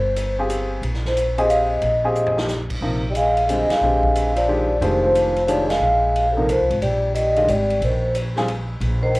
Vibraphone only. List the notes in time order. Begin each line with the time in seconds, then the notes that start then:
Already playing: C5
1.07 C5
1.39 D#5
1.49 F5
1.70 D#5
3.12 D#5
3.17 F5
3.50 D#5
3.71 F5
4.37 D5
4.84 C5
5.05 C5
5.47 C#5
5.51 D5
5.70 F5
6.33 A4
6.38 A#4
6.50 C5
6.83 D5
7.15 D#5
7.50 D5
7.84 C5
9.03 C5